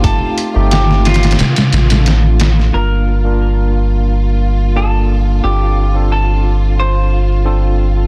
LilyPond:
<<
  \new Staff \with { instrumentName = "Clean electric guitar" } { \time 4/4 \key g \minor \tempo 4 = 89 a'4 g'8 f'2 r8 | bes'2. a'4 | g'4 a'4 c''4. r8 | }
  \new Staff \with { instrumentName = "String section" } { \time 4/4 \key g \minor f'1 | f'1~ | f'1 | }
  \new Staff \with { instrumentName = "Tine electric piano" } { \time 4/4 \key g \minor <a c' ees' g'>8. <a c' ees' g'>4~ <a c' ees' g'>16 r8. <a c' d' a'>4~ <a c' d' a'>16 | <bes d' f' bes'>8. <bes d' f' bes'>2~ <bes d' f' bes'>16 <bes d' f' a'>4 | <c' d' f' a'>8. <c' d' f' a'>2~ <c' d' f' a'>16 <c' d' f' a'>4 | }
  \new Staff \with { instrumentName = "Analog synth bass" } { \clef bass \time 4/4 \key g \minor g,,16 r8 g,,4~ g,,16 d,,8 a,,4. | g,,1 | g,,1 | }
  \new DrumStaff \with { instrumentName = "Drums" } \drummode { \time 4/4 <hh bd>8 hh8 <hh sn>16 sn16 <hh sn>32 <hh sn>32 <hh sn>32 <hh sn>32 <hh sn>16 <hh sn>16 <hh sn>16 <hh sn>16 <hh sn>8 <hh sn>16 sn16 | r4 r4 r4 r4 | r4 r4 r4 r4 | }
>>